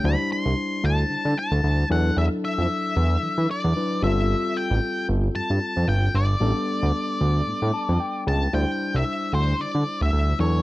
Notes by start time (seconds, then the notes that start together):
0.04 D2 F#3 D4 E4 C5 B5
0.10 G3
0.32 C6
0.45 C2
0.84 D2 A5
1.10 D3
1.25 D3
1.39 A5
1.52 D2
1.64 D2
1.89 E2 F#3 D4 E4 A4 F#5
2.17 E2 E5
2.45 E5
2.58 F2
2.96 E2
3.23 E3
3.38 E3
3.51 D5
3.64 E2
3.76 F#3 D4 E4 B4
4.02 G1 G3 C4 F4 A4 E5
4.57 G5
4.71 A1
5.09 G1
5.35 G2 A5
5.50 G2
5.77 F2
5.88 G1 G5
6.14 G1 D5
6.40 A1 G3 B3 D4 A4
6.83 D2
7.21 D2
7.47 A2
7.62 A2
7.74 A5
7.89 F2
8.00 G5
8.27 C#2 A5
8.53 D2 G3 D4 E4 C5 G5
8.94 C2 E5
9.33 D2 C5
9.60 D3 D5
9.75 D3
10.01 D2 E5
10.13 D2
10.39 E2 F#3 D4 E4 A4 C#5